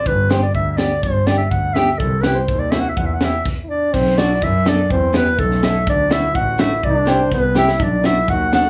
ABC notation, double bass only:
X:1
M:2/4
L:1/8
Q:1/4=124
K:Em
V:1 name="Double bass" clef=bass
G,,,2 D,,2 | G,,,2 D,,2 | C,,2 ^D,,2 | E,,2 z2 |
B,,,2 F,,2 | E,,2 B,,,2 | D,,2 A,,,2 | C,,2 C,,2 |
B,,,2 ^D,,2 |]